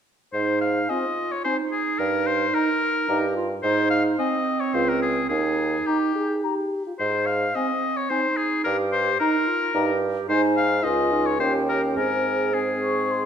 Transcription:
0.33 bassoon G#2, clarinet D#4, oboe C5
0.61 oboe F5
0.89 french horn C4, clarinet F4, oboe D#5, flute G#5
1.32 oboe C#5
1.44 french horn C4, clarinet D#4, oboe C5, flute G#5
1.72 oboe G#4
1.98 bassoon G2, oboe A#4
2.27 oboe C5
2.53 french horn D#4, oboe A#4, flute A#5
3.09 bassoon G2, french horn D#4, clarinet G4, flute A#5
3.36 clarinet F4
3.63 bassoon G#2, clarinet D#4, oboe C5
3.91 oboe F5
4.18 clarinet C4, french horn C4, oboe D#5, flute G#5
4.60 oboe C#5
4.74 bassoon C#2, french horn F4, oboe C5, flute F5
4.89 oboe A#4
5.02 oboe G#4
5.29 bassoon D#2, clarinet D#4, oboe G#4
5.86 french horn D#4, oboe G4, flute A#5
6.16 french horn G#4
6.44 french horn G4, flute A#5
6.87 french horn F4
6.99 bassoon G#2, oboe C5
7.26 oboe F5
7.55 french horn C4, clarinet C4, oboe D#5, flute G#5
7.97 oboe C#5
8.10 french horn C4, clarinet D#4, oboe C5, flute G#5
8.37 oboe G#4
8.65 bassoon G2, clarinet G4, oboe A#4
8.93 oboe C5
9.20 clarinet D#4, french horn D#4, oboe A#4, flute A#5
9.48 clarinet F4
9.74 bassoon G2, french horn D#4, clarinet G4, flute A#5
10.29 bassoon G#2, clarinet D#4, french horn D#4, oboe C5, flute G#5
10.57 oboe F5
10.84 bassoon C#2, french horn F4, clarinet F4, oboe D#5, flute G#5
11.12 french horn D#4
11.26 oboe C#5
11.40 bassoon D#2, french horn C#4, clarinet G4, oboe C5, flute G5
11.69 oboe A#4
11.96 bassoon G#2, french horn C4, clarinet G#4, oboe A#4, flute G#5
12.54 french horn C4, oboe G#4, flute G#5
12.82 flute C#6
13.11 flute C6

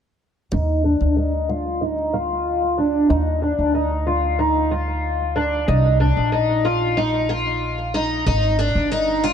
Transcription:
0.52 upright bass D#2, twelve-string acoustic guitar D#4
0.84 twelve-string acoustic guitar D4
1.01 upright bass D2
1.17 twelve-string acoustic guitar D#4
1.49 twelve-string acoustic guitar F4
1.81 twelve-string acoustic guitar D#4
2.13 twelve-string acoustic guitar F4
2.78 twelve-string acoustic guitar D4
3.10 upright bass D#2, twelve-string acoustic guitar D#4
3.42 twelve-string acoustic guitar D4
3.59 upright bass D2
3.74 twelve-string acoustic guitar D#4
4.07 twelve-string acoustic guitar F4
4.39 twelve-string acoustic guitar D#4
4.71 twelve-string acoustic guitar F4
5.36 twelve-string acoustic guitar D4
5.68 upright bass C2, twelve-string acoustic guitar D#4
6.00 twelve-string acoustic guitar D4
6.17 upright bass A#1
6.32 twelve-string acoustic guitar D#4
6.65 twelve-string acoustic guitar F4
6.97 twelve-string acoustic guitar D#4
7.29 twelve-string acoustic guitar F4
7.94 twelve-string acoustic guitar D#4
8.26 upright bass G#1, twelve-string acoustic guitar D#4
8.59 twelve-string acoustic guitar D4
8.75 upright bass G1
8.92 twelve-string acoustic guitar D#4
9.24 twelve-string acoustic guitar F4

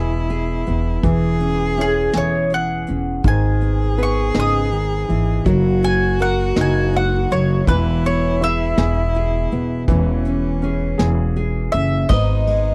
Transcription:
Already playing: upright bass E1, nylon-string guitar B2 E3 B3 G#4, upright piano E3 E4 G#4, cello E4
0.30 nylon-string guitar G#4, closed hi-hat
0.66 upright bass E1, nylon-string guitar B3, closed hi-hat
1.03 upright bass E1, nylon-string guitar E3, upright piano E3, cello G#4, kick, closed hi-hat
1.40 nylon-string guitar C#4, closed hi-hat
1.77 upright piano C#4, nylon-string guitar E4, closed hi-hat
1.81 mandolin G#4
2.13 upright bass E1, nylon-string guitar E3, upright piano G#4, mandolin C#5, snare, closed hi-hat
2.50 nylon-string guitar G#4, closed hi-hat
2.54 mandolin F#5
2.87 upright bass E1, nylon-string guitar C#4, closed hi-hat
3.23 upright bass G#1, nylon-string guitar G#2, upright piano D#3, cello G#4, kick, closed hi-hat
3.28 mandolin G#5
3.61 nylon-string guitar B3, closed hi-hat
3.98 upright piano B3, nylon-string guitar B4, closed hi-hat
4.03 mandolin C#6
4.34 upright bass G#1, nylon-string guitar C#3, upright piano D#4, snare, closed hi-hat
4.40 mandolin D#6
4.71 nylon-string guitar D#3, closed hi-hat
5.08 upright bass G#1, nylon-string guitar E3, closed hi-hat
5.44 upright bass F#1, nylon-string guitar F#3 D#4 F#4 A#4, upright piano F#3, cello F#4, kick, closed hi-hat
5.83 nylon-string guitar F#4, mandolin G#5, closed hi-hat
6.19 upright piano A#3, nylon-string guitar A#4, mandolin F#5, closed hi-hat
6.56 upright bass F#1, nylon-string guitar A#3, upright piano D#4, snare, closed hi-hat
6.61 mandolin G#5
6.93 nylon-string guitar G#3, mandolin F#5, closed hi-hat
7.31 upright bass F#1, nylon-string guitar F#3, mandolin C#5, closed hi-hat
7.67 upright bass E1, upright piano E3, nylon-string guitar E3, cello E4, mandolin B4, kick, closed hi-hat
8.05 nylon-string guitar B3, mandolin C#5, closed hi-hat
8.41 upright piano E4, nylon-string guitar G#4, mandolin E5, closed hi-hat
8.78 upright bass E1, nylon-string guitar B2, upright piano G#4, snare, closed hi-hat
9.15 nylon-string guitar G#4, closed hi-hat
9.51 upright bass E1, nylon-string guitar B3, closed hi-hat
9.88 upright bass E1, upright piano E3, nylon-string guitar E3, cello C#4, kick, closed hi-hat
10.25 nylon-string guitar C#4, closed hi-hat
10.62 upright piano C#4, nylon-string guitar G#4, closed hi-hat
10.98 upright bass E1, nylon-string guitar E3, upright piano G#4, snare, closed hi-hat
11.36 nylon-string guitar G#4, closed hi-hat
11.72 upright bass F#1, nylon-string guitar C#4, mandolin E5, closed hi-hat
12.09 upright bass G#1, nylon-string guitar G#2 G#3 B3 D#4 B4, cello D#4, mandolin D#5, kick, ride
12.47 nylon-string guitar G#3, ride

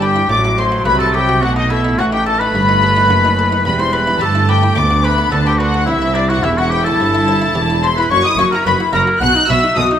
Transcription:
Already playing: double bass section G1, harpsichord G2, cello section G2, viola section G3
0.01 oboe G4, harpsichord B4, violin section G5
0.16 harpsichord E4
0.29 double bass section A1, harpsichord A2, cello section A2, viola section F#3, oboe D5, violin section D6
0.45 harpsichord F#4
0.58 harpsichord A4, oboe C5, violin section C6
0.72 harpsichord F#4
0.85 double bass section C2, harpsichord C3 A3, cello section C3, oboe B4, violin section B5
0.99 harpsichord F#4, oboe A4, violin section A5
1.13 oboe G4, harpsichord A4, violin section G5
1.29 harpsichord F#4
1.41 double bass section B1, cello section B2, harpsichord B2, viola section A3, oboe F#4, violin section F#5
1.55 oboe D#4, harpsichord D#4, violin section D#5
1.70 oboe E4, harpsichord A4, violin section E5
1.85 harpsichord D#4
1.97 double bass section A1, cello section A2, harpsichord A2 F#4, viola section A3, oboe F#4, violin section F#5
2.12 harpsichord D#4, oboe G4, violin section G5
2.26 oboe A4, harpsichord A4, violin section A5
2.39 harpsichord D#4, oboe B4, violin section B5
2.53 double bass section G1, cello section G2, harpsichord G2
2.69 harpsichord D#4
2.83 harpsichord A4
2.97 harpsichord D#4
3.10 double bass section F#1, cello section F#2, harpsichord F#2 F#4
3.25 harpsichord D#4
3.39 harpsichord A4
3.52 harpsichord D#4
3.65 double bass section E1, harpsichord E2, cello section E2, viola section G3, oboe B4, violin section B5
3.79 harpsichord E4, oboe C5, violin section C6
3.93 harpsichord B4, oboe B4, violin section B5
4.07 harpsichord E4
4.20 double bass section G1, harpsichord G2 G4, cello section G2, viola section A3, oboe A4, violin section A5
4.35 harpsichord E4
4.48 oboe G4, harpsichord B4, violin section G5
4.63 harpsichord E4
4.76 harpsichord D2, cello section D2, double bass section D2, viola section B3, oboe D5, violin section D6
4.91 harpsichord F#4
5.04 oboe B4, harpsichord B4, violin section B5
5.18 harpsichord F#4
5.31 double bass section D2, cello section D3, harpsichord D3 B3, oboe A4, violin section A5
5.45 harpsichord F#4, oboe G4, violin section G5
5.59 oboe F#4, harpsichord B4, violin section F#5
5.74 harpsichord F#4
5.86 double bass section C2, cello section C2, harpsichord C2, oboe E4, viola section E4, violin section E5
6.02 harpsichord E4
6.15 oboe D4, harpsichord C5, violin section D5
6.29 harpsichord E4, oboe F#4, violin section F#5
6.42 double bass section E1, cello section E2, harpsichord E2 G4, oboe E4, viola section E4, violin section E5
6.57 harpsichord E4, oboe F#4, violin section F#5
6.70 oboe G4, harpsichord C5, violin section G5
6.84 harpsichord E4, oboe A4, violin section A5
6.98 double bass section G1, cello section G2, harpsichord G2
7.14 harpsichord E4
7.28 harpsichord C5
7.42 harpsichord E4
7.54 double bass section E1, cello section E2, harpsichord E2 G4
7.70 harpsichord E4
7.82 oboe C5, harpsichord C5, violin section C6
7.96 harpsichord E4, oboe B4, violin section B5
8.09 double bass section F#1, cello section F#2, harpsichord F#2, viola section F#4, oboe C#5, violin section C#6
8.24 viola section E4, harpsichord F#4, oboe D#5, violin section D#6
8.37 double bass section F#1, cello section F#2, harpsichord F#2 E5, viola section F#4, oboe C#5, violin section C#6
8.50 viola section E4, harpsichord F#4, oboe A#4, violin section A#5
8.64 double bass section F#1, cello section F#2, harpsichord F#2 A#4, viola section F#4, oboe B4, violin section B5
8.80 viola section E4, harpsichord F#4
8.93 double bass section F#1, harpsichord F#2 E5, cello section F#2, viola section F#4, oboe A#4, violin section A#5
9.07 viola section E4, harpsichord F#4
9.20 double bass section B1, cello section B2, harpsichord B2, viola section F#4, oboe F#5, violin section F#6
9.36 viola section D#4, harpsichord D#4
9.47 double bass section B1, cello section B2, harpsichord B2 B4, viola section F#4, oboe E5, violin section E6
9.64 viola section D#4, harpsichord D#4
9.76 double bass section B1, cello section B2, harpsichord B2 A4, viola section F#4, oboe D#5, violin section D#6
9.91 harpsichord D#4, viola section D#4

